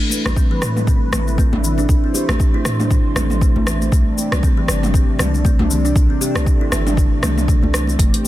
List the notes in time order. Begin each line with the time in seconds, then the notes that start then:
Already playing: A3 E4 B4
0.10 muted conga, shaker
0.25 A1 G3, cross-stick, high conga, low conga, shaker
0.36 C4, kick, shaker
0.51 E3
0.62 A2, cross-stick, muted conga, high conga, shaker
0.77 mid tom, high conga, shaker
0.87 C4, kick, muted conga, shaker
1.13 A1, cross-stick, mid tom, high conga, low conga, shaker
1.28 muted conga, shaker
1.38 C4, kick, high conga, shaker
1.53 A1 D4, mid tom, muted conga, high conga, low conga
1.64 E3, shaker
1.78 D4, muted conga, shaker
1.89 A1 C5, kick, shaker
2.04 C4
2.14 G4, muted conga, shaker
2.29 A1, cross-stick, high conga, low conga, shaker
2.40 kick, muted conga, shaker
2.54 E4
2.65 A2 E3, cross-stick, muted conga, high conga, shaker
2.80 D4, mid tom, high conga, shaker
2.91 kick, muted conga, low conga, shaker
3.16 A1 C4, cross-stick, mid tom, high conga, low conga, shaker
3.30 mid tom, muted conga, shaker
3.41 A3, kick, shaker
3.56 A1 A3, muted conga, high conga
3.66 E3, cross-stick, low conga, shaker
3.82 muted conga, shaker
3.92 C2 C3 G3 A3 D4, kick, shaker
4.18 muted conga, shaker
4.32 C2 G3, cross-stick, high conga, low conga, shaker
4.43 C4, kick, muted conga, shaker
4.57 E3
4.68 G1, cross-stick, muted conga, high conga, shaker
4.83 mid tom, high conga, shaker
4.94 C4, kick, muted conga, shaker
5.19 C2, cross-stick, mid tom, high conga, low conga, shaker
5.34 muted conga, shaker
5.45 C4, kick, high conga, shaker
5.59 C2 D4, mid tom, muted conga, high conga, low conga
5.70 E3, shaker
5.85 D4, muted conga, shaker
5.96 C2 A3, kick, shaker
6.10 C4
6.21 G4, muted conga, shaker
6.35 C2, cross-stick, high conga, low conga, shaker
6.46 kick, muted conga, shaker
6.61 E4
6.72 G1 E3, cross-stick, muted conga, high conga, shaker
6.87 D4, mid tom, high conga, shaker
6.97 kick, muted conga, low conga, shaker
7.22 C2 C4, cross-stick, mid tom, high conga, low conga, shaker
7.38 mid tom, muted conga, shaker
7.48 A3, kick, shaker
7.63 C2 A3, muted conga, high conga
7.73 E3, cross-stick, low conga, shaker
7.87 muted conga, shaker
7.99 F1 A3 C4 G4, kick, closed hi-hat, shaker
8.14 closed hi-hat